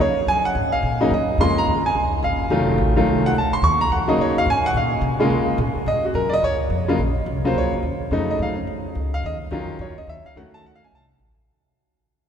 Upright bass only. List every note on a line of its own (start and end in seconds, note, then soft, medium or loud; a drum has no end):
0.00 0.26 F2 medium
0.27 0.54 F#2 medium
0.55 0.82 G#2 medium
0.83 1.10 A#2 medium
1.11 1.37 F#2 medium
1.38 1.66 F2 medium
1.67 1.94 D#2 medium
1.95 2.22 C#2 medium
2.23 2.50 G#1 medium
2.50 2.78 F1 medium
2.78 3.05 A1 medium
3.06 3.34 C2 medium
3.34 3.50 C#2 medium
3.51 muted upright bass stroke soft
3.62 3.89 D#2 medium
3.90 4.17 F2 medium
4.18 4.45 F#2 medium
4.46 4.73 G#2 medium
4.74 5.01 A#2 medium
5.02 5.29 C3 medium
5.30 5.58 C#3 medium
5.58 5.74 A#2 medium
5.76 muted upright bass stroke soft
5.86 6.14 G#2 medium
6.14 6.42 F#2 medium
6.42 6.69 C#2 medium
6.70 6.97 F2 medium
6.98 7.26 A#1 medium
7.26 7.54 C2 medium
7.54 7.64 C#2 medium
7.64 7.72 A#1 medium
7.73 7.82 F#1 medium
7.83 8.10 D#2 medium
8.11 8.38 F2 medium
8.39 8.66 F#2 medium
8.67 8.94 F2 medium
8.95 9.22 C#2 medium
9.23 9.50 D#2 medium
9.51 9.78 F2 medium
9.79 9.89 F#2 medium
9.89 9.97 D#2 soft
9.98 10.06 C#2 medium
10.07 10.23 D#2 medium
10.24 muted upright bass stroke soft
10.35 10.51 F2 medium
10.52 muted upright bass stroke soft
10.63 10.90 C#2 medium
10.91 11.18 C2 medium
11.19 11.47 A1 medium